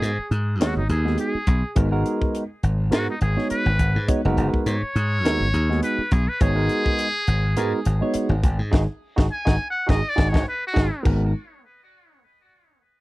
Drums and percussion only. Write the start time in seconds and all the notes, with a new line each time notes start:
0.03 closed hi-hat
0.32 closed hi-hat
0.61 snare, closed hi-hat
0.89 closed hi-hat
1.07 snare
1.18 closed hi-hat
1.47 kick, closed hi-hat
1.76 kick, closed hi-hat
2.06 closed hi-hat
2.22 kick
2.35 closed hi-hat
2.63 closed hi-hat
2.92 snare, closed hi-hat
3.21 closed hi-hat
3.38 snare
3.50 closed hi-hat
3.79 kick, closed hi-hat
4.08 kick, closed hi-hat
4.38 closed hi-hat
4.54 kick
4.66 closed hi-hat
4.96 closed hi-hat
5.25 snare, closed hi-hat
5.54 closed hi-hat
5.71 snare
5.83 closed hi-hat
6.11 kick, closed hi-hat
6.40 kick, closed hi-hat
6.69 closed hi-hat
6.86 kick
6.99 closed hi-hat
7.27 closed hi-hat
7.57 closed hi-hat
7.85 closed hi-hat
8.14 closed hi-hat
8.43 kick, closed hi-hat
8.73 kick, snare
9.18 kick, snare
9.47 kick, snare
9.89 kick, snare
10.18 kick, snare
10.34 kick, snare
10.76 kick, snare
11.05 kick, crash